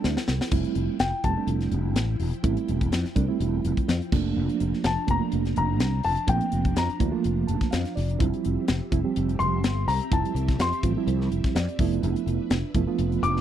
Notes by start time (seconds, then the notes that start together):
Already playing: F3 G3 A3 C4 D4 E4 A4 G5
0.04 D2, snare
0.17 snare
0.28 C2, snare
0.41 muted fretless electric bass stroke, snare
0.51 F1 F3 G3 A3 C4 E4 G5, kick, crash
0.65 closed hi-hat
0.75 F1, closed hi-hat
0.99 F1 G5, snare, closed hi-hat
1.24 F1 G3 A3 C4 G4 A5, kick, closed hi-hat
1.37 G3 A3 C4 D4
1.47 F1, closed hi-hat
1.61 snare, closed hi-hat
1.71 F1, closed hi-hat
1.95 A1, snare, closed hi-hat
2.19 E1, open hi-hat
2.33 closed hi-hat
2.43 A1 G3 A3 C4 E4, kick, closed hi-hat
2.57 closed hi-hat
2.68 E1, closed hi-hat
2.81 kick, closed hi-hat
2.92 F2, snare, closed hi-hat
3.05 muted fretless electric bass stroke, snare, closed hi-hat
3.16 C2 G3 A3 C4 D4, kick, closed hi-hat
3.28 G3 A3 C4 E4
3.40 E1, closed hi-hat
3.64 F1, closed hi-hat
3.77 muted fretless electric bass stroke, kick, closed hi-hat
3.88 F2, snare, closed hi-hat
4.02 closed hi-hat
4.12 F1 F3 A3 A#3 D4 A#5, kick, snare, crash
4.36 F1
4.49 closed hi-hat
4.60 F1, closed hi-hat
4.74 snare
4.84 F1 A5, snare, closed hi-hat
5.07 F1 F3 A3 A#3 C4 A#5, kick, closed hi-hat
5.20 F3 A3 A#3 D4
5.32 F1, closed hi-hat
5.45 snare, closed hi-hat
5.56 F1 A#5, closed hi-hat
5.80 C2, snare, closed hi-hat
6.03 F1 A5, open hi-hat
6.17 closed hi-hat
6.27 A#1 F3 A3 A#3 C4 G5, kick, closed hi-hat
6.41 closed hi-hat
6.52 F1, closed hi-hat
6.65 kick, closed hi-hat
6.76 F2 A#5, snare, closed hi-hat
6.89 muted fretless electric bass stroke, closed hi-hat
6.99 D2 F3 A3 A#3 E4, kick, closed hi-hat
7.11 F3 A3 A#3 F4
7.24 F1, closed hi-hat
7.47 F1 A5, closed hi-hat
7.61 kick, snare, closed hi-hat
7.71 F2 F5, snare, closed hi-hat
7.85 snare, closed hi-hat
7.96 F1 D5, snare, open hi-hat
8.10 closed hi-hat
8.19 F1 F3 G3 C4 E4 G4 E5, kick, closed hi-hat
8.34 closed hi-hat
8.45 F1, closed hi-hat
8.68 F1, snare, closed hi-hat
8.92 F1 F3 G3 C4 E4, kick, closed hi-hat
9.04 F3 G3 C4 G4
9.16 F1, closed hi-hat
9.29 closed hi-hat
9.39 F1 C6, closed hi-hat
9.64 G1, snare, closed hi-hat
9.87 C2 A#5, snare, open hi-hat
10.01 closed hi-hat
10.11 F1 F3 G3 C4 E4 A5, kick, closed hi-hat
10.25 closed hi-hat
10.34 C2, closed hi-hat
10.48 kick, snare, closed hi-hat
10.58 F2 C6, snare, closed hi-hat
10.72 muted fretless electric bass stroke, closed hi-hat
10.83 A1 F3 G3 C4 F4, kick, closed hi-hat
10.97 F3 G3 C4 E4
11.07 C2, closed hi-hat
11.21 snare
11.31 F1, closed hi-hat
11.44 kick, snare, closed hi-hat
11.55 F2 D5, snare, closed hi-hat
11.69 closed hi-hat
11.78 F1 F3 A3 B3 D4 E4 B4, kick, open hi-hat
11.93 closed hi-hat
12.03 F1, closed hi-hat
12.16 closed hi-hat
12.26 F1, closed hi-hat
12.50 F1, snare, closed hi-hat
12.74 F1 F3 A3 B3 E4, kick, closed hi-hat
12.87 F3 A3 B3 F4
12.98 F1, closed hi-hat
13.12 closed hi-hat
13.22 F1 D6, closed hi-hat
13.37 snare